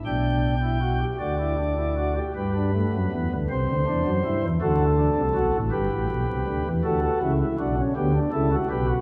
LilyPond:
<<
  \new Staff \with { instrumentName = "Pipe organ" } { \time 6/8 \key g \major \tempo 4. = 54 << { g''4. d''4. | b'4. c''4. | a'4. b'4. | a'16 a'16 e'8 fis'8 g'8 a'8 b'8 | } \\ { d'8. e'16 fis'16 g'16 fis'16 e'16 d'16 e'16 fis'16 g'16 | g'16 d'16 a8 b8 c'8 d'8 e'8 | fis'8 d'8 fis'8 g'4. | fis'8. e'16 d'16 cis'16 b16 d'16 e'16 fis'16 g'16 fis'16 | } >> }
  \new Staff \with { instrumentName = "Pipe organ" } { \clef bass \time 6/8 \key g \major <b,, b,>4. <d, d>4. | <g, g>8. <fis, fis>16 <e, e>16 <d, d>16 <c, c>16 <d, d>16 <e, e>16 <fis, fis>16 <g, g>16 <e, e>16 | <d, d>8. <c, c>16 <b,, b,>16 <a,, a,>16 <g,, g,>16 <a,, a,>16 <b,, b,>16 <c, c>16 <d, d>16 <e, e>16 | <d, d>8 <cis, cis>8 <b,, b,>8 <d, d>8 <cis, cis>8 <b,, b,>8 | }
>>